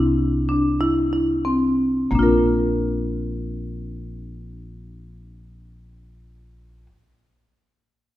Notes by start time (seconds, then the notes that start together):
Already playing: C2 E4
0.49 D4
0.81 E4
1.13 E4
1.45 C4
2.11 A#1 A#3
2.15 D4
2.19 F4 A#4